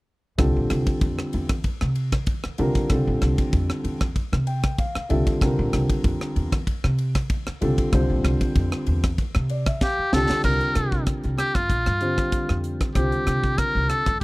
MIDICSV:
0, 0, Header, 1, 6, 480
1, 0, Start_track
1, 0, Tempo, 628272
1, 296, Time_signature, 4, 2, 24, 8
1, 10878, End_track
2, 0, Start_track
2, 0, Title_t, "Muted trumpet"
2, 0, Program_c, 0, 59
2, 7510, Note_on_c, 0, 67, 79
2, 7742, Note_on_c, 0, 69, 88
2, 7753, Note_off_c, 0, 67, 0
2, 7973, Note_off_c, 0, 69, 0
2, 7977, Note_on_c, 0, 70, 85
2, 8426, Note_off_c, 0, 70, 0
2, 8699, Note_on_c, 0, 67, 86
2, 8823, Note_on_c, 0, 65, 76
2, 8834, Note_off_c, 0, 67, 0
2, 9657, Note_off_c, 0, 65, 0
2, 9895, Note_on_c, 0, 67, 72
2, 10375, Note_on_c, 0, 70, 80
2, 10387, Note_off_c, 0, 67, 0
2, 10614, Note_on_c, 0, 69, 78
2, 10625, Note_off_c, 0, 70, 0
2, 10849, Note_off_c, 0, 69, 0
2, 10853, Note_on_c, 0, 67, 78
2, 10878, Note_off_c, 0, 67, 0
2, 10878, End_track
3, 0, Start_track
3, 0, Title_t, "Grand piano"
3, 0, Program_c, 1, 0
3, 289, Note_on_c, 1, 55, 67
3, 290, Note_on_c, 1, 50, 71
3, 294, Note_on_c, 1, 60, 66
3, 296, Note_on_c, 1, 65, 67
3, 299, Note_on_c, 1, 69, 77
3, 1143, Note_off_c, 1, 50, 0
3, 1143, Note_off_c, 1, 55, 0
3, 1145, Note_off_c, 1, 60, 0
3, 1146, Note_off_c, 1, 65, 0
3, 1148, Note_off_c, 1, 69, 0
3, 1974, Note_on_c, 1, 50, 74
3, 1977, Note_on_c, 1, 55, 66
3, 1977, Note_on_c, 1, 60, 62
3, 1980, Note_on_c, 1, 65, 63
3, 1983, Note_on_c, 1, 70, 82
3, 2188, Note_off_c, 1, 50, 0
3, 2190, Note_off_c, 1, 55, 0
3, 2190, Note_off_c, 1, 60, 0
3, 2192, Note_off_c, 1, 65, 0
3, 2193, Note_off_c, 1, 70, 0
3, 2211, Note_on_c, 1, 50, 74
3, 2212, Note_on_c, 1, 55, 67
3, 2216, Note_on_c, 1, 60, 69
3, 2218, Note_on_c, 1, 65, 69
3, 2222, Note_on_c, 1, 69, 84
3, 3064, Note_off_c, 1, 50, 0
3, 3064, Note_off_c, 1, 55, 0
3, 3066, Note_off_c, 1, 60, 0
3, 3067, Note_off_c, 1, 65, 0
3, 3069, Note_off_c, 1, 69, 0
3, 3415, Note_on_c, 1, 79, 64
3, 3640, Note_off_c, 1, 79, 0
3, 3657, Note_on_c, 1, 77, 66
3, 3881, Note_off_c, 1, 77, 0
3, 3891, Note_on_c, 1, 50, 71
3, 3894, Note_on_c, 1, 55, 69
3, 3895, Note_on_c, 1, 76, 61
3, 3896, Note_on_c, 1, 60, 65
3, 3897, Note_on_c, 1, 65, 66
3, 3899, Note_on_c, 1, 69, 78
3, 4107, Note_off_c, 1, 50, 0
3, 4108, Note_off_c, 1, 55, 0
3, 4109, Note_off_c, 1, 60, 0
3, 4110, Note_off_c, 1, 65, 0
3, 4111, Note_off_c, 1, 69, 0
3, 4119, Note_off_c, 1, 76, 0
3, 4134, Note_on_c, 1, 50, 79
3, 4137, Note_on_c, 1, 55, 69
3, 4137, Note_on_c, 1, 60, 68
3, 4141, Note_on_c, 1, 65, 67
3, 4144, Note_on_c, 1, 70, 80
3, 4984, Note_off_c, 1, 50, 0
3, 4985, Note_off_c, 1, 60, 0
3, 4986, Note_off_c, 1, 55, 0
3, 4988, Note_off_c, 1, 65, 0
3, 4989, Note_off_c, 1, 70, 0
3, 5815, Note_on_c, 1, 50, 70
3, 5818, Note_on_c, 1, 55, 67
3, 5820, Note_on_c, 1, 60, 68
3, 5823, Note_on_c, 1, 65, 71
3, 5826, Note_on_c, 1, 69, 83
3, 6028, Note_off_c, 1, 50, 0
3, 6029, Note_off_c, 1, 55, 0
3, 6030, Note_off_c, 1, 60, 0
3, 6031, Note_off_c, 1, 65, 0
3, 6033, Note_off_c, 1, 69, 0
3, 6052, Note_on_c, 1, 50, 81
3, 6056, Note_on_c, 1, 55, 68
3, 6059, Note_on_c, 1, 60, 71
3, 6062, Note_on_c, 1, 65, 70
3, 6062, Note_on_c, 1, 72, 86
3, 6902, Note_off_c, 1, 50, 0
3, 6904, Note_off_c, 1, 55, 0
3, 6906, Note_off_c, 1, 60, 0
3, 6907, Note_off_c, 1, 65, 0
3, 6908, Note_off_c, 1, 72, 0
3, 7260, Note_on_c, 1, 74, 62
3, 7377, Note_off_c, 1, 74, 0
3, 7386, Note_on_c, 1, 76, 60
3, 7489, Note_off_c, 1, 76, 0
3, 7502, Note_on_c, 1, 77, 65
3, 7722, Note_off_c, 1, 77, 0
3, 7734, Note_on_c, 1, 50, 72
3, 7736, Note_on_c, 1, 55, 64
3, 7740, Note_on_c, 1, 60, 64
3, 7740, Note_on_c, 1, 81, 62
3, 7741, Note_on_c, 1, 65, 63
3, 7745, Note_on_c, 1, 67, 77
3, 7947, Note_off_c, 1, 50, 0
3, 7948, Note_off_c, 1, 55, 0
3, 7950, Note_off_c, 1, 60, 0
3, 7951, Note_off_c, 1, 65, 0
3, 7953, Note_off_c, 1, 67, 0
3, 7961, Note_off_c, 1, 81, 0
3, 7976, Note_on_c, 1, 50, 61
3, 7977, Note_on_c, 1, 55, 56
3, 7978, Note_on_c, 1, 60, 56
3, 7982, Note_on_c, 1, 65, 54
3, 7985, Note_on_c, 1, 70, 63
3, 8826, Note_off_c, 1, 50, 0
3, 8826, Note_off_c, 1, 55, 0
3, 8827, Note_off_c, 1, 60, 0
3, 8829, Note_off_c, 1, 65, 0
3, 8830, Note_off_c, 1, 70, 0
3, 9172, Note_on_c, 1, 50, 56
3, 9176, Note_on_c, 1, 55, 55
3, 9179, Note_on_c, 1, 60, 57
3, 9181, Note_on_c, 1, 65, 55
3, 9181, Note_on_c, 1, 72, 65
3, 9813, Note_off_c, 1, 50, 0
3, 9815, Note_off_c, 1, 55, 0
3, 9816, Note_off_c, 1, 60, 0
3, 9817, Note_off_c, 1, 65, 0
3, 9817, Note_off_c, 1, 72, 0
3, 9892, Note_on_c, 1, 50, 58
3, 9895, Note_on_c, 1, 55, 55
3, 9896, Note_on_c, 1, 60, 55
3, 9901, Note_on_c, 1, 72, 65
3, 9902, Note_on_c, 1, 65, 52
3, 10747, Note_off_c, 1, 50, 0
3, 10748, Note_off_c, 1, 55, 0
3, 10748, Note_off_c, 1, 60, 0
3, 10751, Note_off_c, 1, 65, 0
3, 10751, Note_off_c, 1, 72, 0
3, 10878, End_track
4, 0, Start_track
4, 0, Title_t, "Upright bass"
4, 0, Program_c, 2, 32
4, 296, Note_on_c, 2, 36, 82
4, 416, Note_off_c, 2, 36, 0
4, 431, Note_on_c, 2, 34, 78
4, 533, Note_off_c, 2, 34, 0
4, 542, Note_on_c, 2, 36, 81
4, 659, Note_off_c, 2, 36, 0
4, 775, Note_on_c, 2, 41, 76
4, 896, Note_off_c, 2, 41, 0
4, 1023, Note_on_c, 2, 40, 73
4, 1246, Note_off_c, 2, 40, 0
4, 1389, Note_on_c, 2, 48, 80
4, 1613, Note_off_c, 2, 48, 0
4, 1979, Note_on_c, 2, 36, 74
4, 2099, Note_off_c, 2, 36, 0
4, 2216, Note_on_c, 2, 36, 81
4, 2337, Note_off_c, 2, 36, 0
4, 2348, Note_on_c, 2, 34, 76
4, 2453, Note_off_c, 2, 34, 0
4, 2459, Note_on_c, 2, 36, 80
4, 2579, Note_off_c, 2, 36, 0
4, 2698, Note_on_c, 2, 41, 81
4, 2818, Note_off_c, 2, 41, 0
4, 2934, Note_on_c, 2, 40, 73
4, 3162, Note_off_c, 2, 40, 0
4, 3305, Note_on_c, 2, 48, 88
4, 3531, Note_off_c, 2, 48, 0
4, 3900, Note_on_c, 2, 36, 78
4, 4019, Note_off_c, 2, 36, 0
4, 4136, Note_on_c, 2, 36, 86
4, 4257, Note_off_c, 2, 36, 0
4, 4269, Note_on_c, 2, 34, 83
4, 4373, Note_off_c, 2, 34, 0
4, 4381, Note_on_c, 2, 36, 83
4, 4499, Note_off_c, 2, 36, 0
4, 4617, Note_on_c, 2, 41, 80
4, 4737, Note_off_c, 2, 41, 0
4, 4859, Note_on_c, 2, 40, 75
4, 5083, Note_off_c, 2, 40, 0
4, 5225, Note_on_c, 2, 48, 86
4, 5450, Note_off_c, 2, 48, 0
4, 5821, Note_on_c, 2, 36, 80
4, 5939, Note_off_c, 2, 36, 0
4, 6056, Note_on_c, 2, 36, 91
4, 6176, Note_off_c, 2, 36, 0
4, 6186, Note_on_c, 2, 34, 76
4, 6290, Note_off_c, 2, 34, 0
4, 6297, Note_on_c, 2, 36, 90
4, 6416, Note_off_c, 2, 36, 0
4, 6538, Note_on_c, 2, 41, 78
4, 6657, Note_off_c, 2, 41, 0
4, 6779, Note_on_c, 2, 40, 80
4, 7003, Note_off_c, 2, 40, 0
4, 7149, Note_on_c, 2, 48, 85
4, 7372, Note_off_c, 2, 48, 0
4, 7737, Note_on_c, 2, 36, 81
4, 7856, Note_off_c, 2, 36, 0
4, 7978, Note_on_c, 2, 36, 85
4, 8097, Note_off_c, 2, 36, 0
4, 8220, Note_on_c, 2, 48, 75
4, 8444, Note_off_c, 2, 48, 0
4, 8589, Note_on_c, 2, 36, 81
4, 8692, Note_off_c, 2, 36, 0
4, 8826, Note_on_c, 2, 43, 68
4, 8931, Note_off_c, 2, 43, 0
4, 8935, Note_on_c, 2, 34, 74
4, 9056, Note_off_c, 2, 34, 0
4, 9066, Note_on_c, 2, 43, 71
4, 9291, Note_off_c, 2, 43, 0
4, 9547, Note_on_c, 2, 41, 74
4, 9772, Note_off_c, 2, 41, 0
4, 9897, Note_on_c, 2, 36, 91
4, 10018, Note_off_c, 2, 36, 0
4, 10136, Note_on_c, 2, 48, 75
4, 10364, Note_off_c, 2, 48, 0
4, 10506, Note_on_c, 2, 36, 80
4, 10612, Note_off_c, 2, 36, 0
4, 10748, Note_on_c, 2, 43, 69
4, 10854, Note_off_c, 2, 43, 0
4, 10878, End_track
5, 0, Start_track
5, 0, Title_t, "Muted upright bass strokes"
5, 663, Note_on_c, 9, 29, 31
5, 740, Note_off_c, 9, 29, 0
5, 1871, Note_on_c, 9, 29, 31
5, 1947, Note_off_c, 9, 29, 0
5, 2104, Note_on_c, 9, 29, 36
5, 2180, Note_off_c, 9, 29, 0
5, 2584, Note_on_c, 9, 29, 32
5, 2660, Note_off_c, 9, 29, 0
5, 3788, Note_on_c, 9, 29, 33
5, 3864, Note_off_c, 9, 29, 0
5, 4024, Note_on_c, 9, 29, 36
5, 4101, Note_off_c, 9, 29, 0
5, 4505, Note_on_c, 9, 29, 33
5, 4581, Note_off_c, 9, 29, 0
5, 5708, Note_on_c, 9, 29, 35
5, 5784, Note_off_c, 9, 29, 0
5, 5946, Note_on_c, 9, 29, 37
5, 6023, Note_off_c, 9, 29, 0
5, 6426, Note_on_c, 9, 29, 31
5, 6502, Note_off_c, 9, 29, 0
5, 7628, Note_on_c, 9, 29, 30
5, 7704, Note_off_c, 9, 29, 0
5, 7871, Note_on_c, 9, 29, 34
5, 7948, Note_off_c, 9, 29, 0
5, 9786, Note_on_c, 9, 29, 33
5, 9863, Note_off_c, 9, 29, 0
5, 10878, End_track
6, 0, Start_track
6, 0, Title_t, "Drums"
6, 294, Note_on_c, 9, 51, 61
6, 295, Note_on_c, 9, 36, 79
6, 296, Note_on_c, 9, 37, 79
6, 371, Note_off_c, 9, 36, 0
6, 371, Note_off_c, 9, 51, 0
6, 372, Note_off_c, 9, 37, 0
6, 535, Note_on_c, 9, 51, 61
6, 536, Note_on_c, 9, 37, 75
6, 611, Note_off_c, 9, 51, 0
6, 613, Note_off_c, 9, 37, 0
6, 661, Note_on_c, 9, 51, 57
6, 663, Note_on_c, 9, 36, 74
6, 737, Note_off_c, 9, 51, 0
6, 739, Note_off_c, 9, 36, 0
6, 774, Note_on_c, 9, 51, 60
6, 775, Note_on_c, 9, 36, 101
6, 850, Note_off_c, 9, 51, 0
6, 851, Note_off_c, 9, 36, 0
6, 906, Note_on_c, 9, 37, 81
6, 982, Note_off_c, 9, 37, 0
6, 1015, Note_on_c, 9, 51, 59
6, 1091, Note_off_c, 9, 51, 0
6, 1140, Note_on_c, 9, 51, 62
6, 1141, Note_on_c, 9, 37, 79
6, 1142, Note_on_c, 9, 36, 82
6, 1216, Note_off_c, 9, 51, 0
6, 1218, Note_off_c, 9, 36, 0
6, 1218, Note_off_c, 9, 37, 0
6, 1252, Note_on_c, 9, 51, 60
6, 1255, Note_on_c, 9, 36, 78
6, 1328, Note_off_c, 9, 51, 0
6, 1331, Note_off_c, 9, 36, 0
6, 1383, Note_on_c, 9, 37, 83
6, 1460, Note_off_c, 9, 37, 0
6, 1493, Note_on_c, 9, 51, 60
6, 1570, Note_off_c, 9, 51, 0
6, 1623, Note_on_c, 9, 36, 79
6, 1623, Note_on_c, 9, 51, 60
6, 1624, Note_on_c, 9, 37, 78
6, 1699, Note_off_c, 9, 36, 0
6, 1699, Note_off_c, 9, 51, 0
6, 1701, Note_off_c, 9, 37, 0
6, 1729, Note_on_c, 9, 51, 65
6, 1734, Note_on_c, 9, 36, 105
6, 1806, Note_off_c, 9, 51, 0
6, 1811, Note_off_c, 9, 36, 0
6, 1862, Note_on_c, 9, 37, 79
6, 1938, Note_off_c, 9, 37, 0
6, 1972, Note_on_c, 9, 51, 60
6, 2048, Note_off_c, 9, 51, 0
6, 2101, Note_on_c, 9, 51, 57
6, 2103, Note_on_c, 9, 36, 74
6, 2177, Note_off_c, 9, 51, 0
6, 2179, Note_off_c, 9, 36, 0
6, 2212, Note_on_c, 9, 51, 61
6, 2213, Note_on_c, 9, 37, 81
6, 2215, Note_on_c, 9, 36, 81
6, 2288, Note_off_c, 9, 51, 0
6, 2290, Note_off_c, 9, 37, 0
6, 2292, Note_off_c, 9, 36, 0
6, 2457, Note_on_c, 9, 51, 54
6, 2458, Note_on_c, 9, 37, 77
6, 2533, Note_off_c, 9, 51, 0
6, 2535, Note_off_c, 9, 37, 0
6, 2584, Note_on_c, 9, 36, 78
6, 2585, Note_on_c, 9, 51, 58
6, 2661, Note_off_c, 9, 36, 0
6, 2661, Note_off_c, 9, 51, 0
6, 2696, Note_on_c, 9, 36, 101
6, 2696, Note_on_c, 9, 51, 57
6, 2772, Note_off_c, 9, 51, 0
6, 2773, Note_off_c, 9, 36, 0
6, 2825, Note_on_c, 9, 37, 81
6, 2901, Note_off_c, 9, 37, 0
6, 2938, Note_on_c, 9, 51, 58
6, 3015, Note_off_c, 9, 51, 0
6, 3061, Note_on_c, 9, 51, 54
6, 3063, Note_on_c, 9, 36, 86
6, 3063, Note_on_c, 9, 37, 81
6, 3137, Note_off_c, 9, 51, 0
6, 3139, Note_off_c, 9, 37, 0
6, 3140, Note_off_c, 9, 36, 0
6, 3176, Note_on_c, 9, 36, 77
6, 3177, Note_on_c, 9, 51, 54
6, 3253, Note_off_c, 9, 36, 0
6, 3254, Note_off_c, 9, 51, 0
6, 3308, Note_on_c, 9, 37, 80
6, 3385, Note_off_c, 9, 37, 0
6, 3414, Note_on_c, 9, 51, 53
6, 3491, Note_off_c, 9, 51, 0
6, 3540, Note_on_c, 9, 51, 56
6, 3542, Note_on_c, 9, 37, 78
6, 3543, Note_on_c, 9, 36, 82
6, 3617, Note_off_c, 9, 51, 0
6, 3618, Note_off_c, 9, 37, 0
6, 3619, Note_off_c, 9, 36, 0
6, 3655, Note_on_c, 9, 51, 57
6, 3656, Note_on_c, 9, 36, 103
6, 3732, Note_off_c, 9, 36, 0
6, 3732, Note_off_c, 9, 51, 0
6, 3785, Note_on_c, 9, 37, 81
6, 3861, Note_off_c, 9, 37, 0
6, 3895, Note_on_c, 9, 51, 57
6, 3972, Note_off_c, 9, 51, 0
6, 4024, Note_on_c, 9, 36, 81
6, 4027, Note_on_c, 9, 51, 57
6, 4101, Note_off_c, 9, 36, 0
6, 4103, Note_off_c, 9, 51, 0
6, 4136, Note_on_c, 9, 36, 83
6, 4140, Note_on_c, 9, 51, 58
6, 4141, Note_on_c, 9, 37, 86
6, 4213, Note_off_c, 9, 36, 0
6, 4216, Note_off_c, 9, 51, 0
6, 4218, Note_off_c, 9, 37, 0
6, 4378, Note_on_c, 9, 51, 58
6, 4379, Note_on_c, 9, 37, 78
6, 4454, Note_off_c, 9, 51, 0
6, 4456, Note_off_c, 9, 37, 0
6, 4504, Note_on_c, 9, 36, 77
6, 4505, Note_on_c, 9, 51, 59
6, 4580, Note_off_c, 9, 36, 0
6, 4581, Note_off_c, 9, 51, 0
6, 4617, Note_on_c, 9, 36, 100
6, 4617, Note_on_c, 9, 51, 60
6, 4693, Note_off_c, 9, 36, 0
6, 4693, Note_off_c, 9, 51, 0
6, 4747, Note_on_c, 9, 37, 80
6, 4823, Note_off_c, 9, 37, 0
6, 4860, Note_on_c, 9, 51, 57
6, 4936, Note_off_c, 9, 51, 0
6, 4984, Note_on_c, 9, 36, 81
6, 4984, Note_on_c, 9, 51, 64
6, 4986, Note_on_c, 9, 37, 81
6, 5061, Note_off_c, 9, 36, 0
6, 5061, Note_off_c, 9, 51, 0
6, 5062, Note_off_c, 9, 37, 0
6, 5096, Note_on_c, 9, 36, 79
6, 5098, Note_on_c, 9, 51, 58
6, 5173, Note_off_c, 9, 36, 0
6, 5174, Note_off_c, 9, 51, 0
6, 5226, Note_on_c, 9, 37, 80
6, 5303, Note_off_c, 9, 37, 0
6, 5336, Note_on_c, 9, 51, 58
6, 5413, Note_off_c, 9, 51, 0
6, 5462, Note_on_c, 9, 51, 60
6, 5463, Note_on_c, 9, 36, 75
6, 5464, Note_on_c, 9, 37, 82
6, 5539, Note_off_c, 9, 51, 0
6, 5540, Note_off_c, 9, 36, 0
6, 5540, Note_off_c, 9, 37, 0
6, 5575, Note_on_c, 9, 51, 63
6, 5576, Note_on_c, 9, 36, 109
6, 5652, Note_off_c, 9, 51, 0
6, 5653, Note_off_c, 9, 36, 0
6, 5705, Note_on_c, 9, 37, 84
6, 5781, Note_off_c, 9, 37, 0
6, 5819, Note_on_c, 9, 51, 63
6, 5895, Note_off_c, 9, 51, 0
6, 5944, Note_on_c, 9, 36, 78
6, 5945, Note_on_c, 9, 51, 58
6, 6021, Note_off_c, 9, 36, 0
6, 6021, Note_off_c, 9, 51, 0
6, 6055, Note_on_c, 9, 51, 67
6, 6057, Note_on_c, 9, 36, 83
6, 6057, Note_on_c, 9, 37, 84
6, 6131, Note_off_c, 9, 51, 0
6, 6133, Note_off_c, 9, 36, 0
6, 6133, Note_off_c, 9, 37, 0
6, 6298, Note_on_c, 9, 51, 62
6, 6300, Note_on_c, 9, 37, 79
6, 6375, Note_off_c, 9, 51, 0
6, 6376, Note_off_c, 9, 37, 0
6, 6424, Note_on_c, 9, 51, 59
6, 6425, Note_on_c, 9, 36, 82
6, 6500, Note_off_c, 9, 51, 0
6, 6501, Note_off_c, 9, 36, 0
6, 6536, Note_on_c, 9, 51, 62
6, 6537, Note_on_c, 9, 36, 106
6, 6613, Note_off_c, 9, 36, 0
6, 6613, Note_off_c, 9, 51, 0
6, 6664, Note_on_c, 9, 37, 84
6, 6740, Note_off_c, 9, 37, 0
6, 6773, Note_on_c, 9, 51, 63
6, 6849, Note_off_c, 9, 51, 0
6, 6903, Note_on_c, 9, 51, 58
6, 6904, Note_on_c, 9, 36, 82
6, 6904, Note_on_c, 9, 37, 80
6, 6979, Note_off_c, 9, 51, 0
6, 6981, Note_off_c, 9, 36, 0
6, 6981, Note_off_c, 9, 37, 0
6, 7015, Note_on_c, 9, 51, 55
6, 7016, Note_on_c, 9, 36, 82
6, 7091, Note_off_c, 9, 51, 0
6, 7092, Note_off_c, 9, 36, 0
6, 7141, Note_on_c, 9, 37, 82
6, 7217, Note_off_c, 9, 37, 0
6, 7254, Note_on_c, 9, 51, 55
6, 7330, Note_off_c, 9, 51, 0
6, 7382, Note_on_c, 9, 51, 57
6, 7383, Note_on_c, 9, 37, 82
6, 7384, Note_on_c, 9, 36, 77
6, 7458, Note_off_c, 9, 51, 0
6, 7460, Note_off_c, 9, 36, 0
6, 7460, Note_off_c, 9, 37, 0
6, 7496, Note_on_c, 9, 38, 57
6, 7497, Note_on_c, 9, 36, 107
6, 7573, Note_off_c, 9, 36, 0
6, 7573, Note_off_c, 9, 38, 0
6, 7739, Note_on_c, 9, 38, 82
6, 7815, Note_off_c, 9, 38, 0
6, 7868, Note_on_c, 9, 38, 77
6, 7944, Note_off_c, 9, 38, 0
6, 7973, Note_on_c, 9, 49, 83
6, 7975, Note_on_c, 9, 37, 77
6, 7976, Note_on_c, 9, 36, 70
6, 8050, Note_off_c, 9, 49, 0
6, 8051, Note_off_c, 9, 37, 0
6, 8053, Note_off_c, 9, 36, 0
6, 8103, Note_on_c, 9, 42, 35
6, 8180, Note_off_c, 9, 42, 0
6, 8215, Note_on_c, 9, 42, 55
6, 8217, Note_on_c, 9, 37, 76
6, 8292, Note_off_c, 9, 42, 0
6, 8293, Note_off_c, 9, 37, 0
6, 8344, Note_on_c, 9, 36, 73
6, 8421, Note_off_c, 9, 36, 0
6, 8454, Note_on_c, 9, 42, 76
6, 8456, Note_on_c, 9, 36, 93
6, 8456, Note_on_c, 9, 37, 72
6, 8531, Note_off_c, 9, 42, 0
6, 8532, Note_off_c, 9, 37, 0
6, 8533, Note_off_c, 9, 36, 0
6, 8584, Note_on_c, 9, 42, 34
6, 8661, Note_off_c, 9, 42, 0
6, 8697, Note_on_c, 9, 42, 58
6, 8698, Note_on_c, 9, 37, 76
6, 8773, Note_off_c, 9, 42, 0
6, 8775, Note_off_c, 9, 37, 0
6, 8822, Note_on_c, 9, 42, 35
6, 8824, Note_on_c, 9, 36, 77
6, 8824, Note_on_c, 9, 37, 71
6, 8899, Note_off_c, 9, 42, 0
6, 8900, Note_off_c, 9, 36, 0
6, 8900, Note_off_c, 9, 37, 0
6, 8936, Note_on_c, 9, 36, 70
6, 8936, Note_on_c, 9, 42, 75
6, 9012, Note_off_c, 9, 36, 0
6, 9012, Note_off_c, 9, 42, 0
6, 9062, Note_on_c, 9, 42, 35
6, 9064, Note_on_c, 9, 37, 77
6, 9139, Note_off_c, 9, 42, 0
6, 9140, Note_off_c, 9, 37, 0
6, 9173, Note_on_c, 9, 42, 54
6, 9249, Note_off_c, 9, 42, 0
6, 9303, Note_on_c, 9, 42, 36
6, 9304, Note_on_c, 9, 36, 69
6, 9304, Note_on_c, 9, 37, 68
6, 9379, Note_off_c, 9, 42, 0
6, 9380, Note_off_c, 9, 36, 0
6, 9381, Note_off_c, 9, 37, 0
6, 9414, Note_on_c, 9, 42, 77
6, 9416, Note_on_c, 9, 36, 95
6, 9490, Note_off_c, 9, 42, 0
6, 9492, Note_off_c, 9, 36, 0
6, 9544, Note_on_c, 9, 37, 74
6, 9620, Note_off_c, 9, 37, 0
6, 9656, Note_on_c, 9, 42, 55
6, 9732, Note_off_c, 9, 42, 0
6, 9784, Note_on_c, 9, 36, 73
6, 9784, Note_on_c, 9, 42, 34
6, 9786, Note_on_c, 9, 37, 71
6, 9861, Note_off_c, 9, 36, 0
6, 9861, Note_off_c, 9, 42, 0
6, 9862, Note_off_c, 9, 37, 0
6, 9896, Note_on_c, 9, 36, 70
6, 9896, Note_on_c, 9, 42, 73
6, 9898, Note_on_c, 9, 37, 72
6, 9973, Note_off_c, 9, 36, 0
6, 9973, Note_off_c, 9, 42, 0
6, 9974, Note_off_c, 9, 37, 0
6, 10025, Note_on_c, 9, 42, 37
6, 10102, Note_off_c, 9, 42, 0
6, 10136, Note_on_c, 9, 42, 54
6, 10137, Note_on_c, 9, 37, 74
6, 10212, Note_off_c, 9, 42, 0
6, 10214, Note_off_c, 9, 37, 0
6, 10265, Note_on_c, 9, 36, 72
6, 10341, Note_off_c, 9, 36, 0
6, 10376, Note_on_c, 9, 42, 70
6, 10377, Note_on_c, 9, 36, 93
6, 10377, Note_on_c, 9, 37, 74
6, 10452, Note_off_c, 9, 42, 0
6, 10453, Note_off_c, 9, 36, 0
6, 10454, Note_off_c, 9, 37, 0
6, 10616, Note_on_c, 9, 42, 51
6, 10617, Note_on_c, 9, 37, 77
6, 10692, Note_off_c, 9, 42, 0
6, 10694, Note_off_c, 9, 37, 0
6, 10743, Note_on_c, 9, 42, 36
6, 10745, Note_on_c, 9, 36, 75
6, 10745, Note_on_c, 9, 37, 73
6, 10819, Note_off_c, 9, 42, 0
6, 10821, Note_off_c, 9, 37, 0
6, 10822, Note_off_c, 9, 36, 0
6, 10878, End_track
0, 0, End_of_file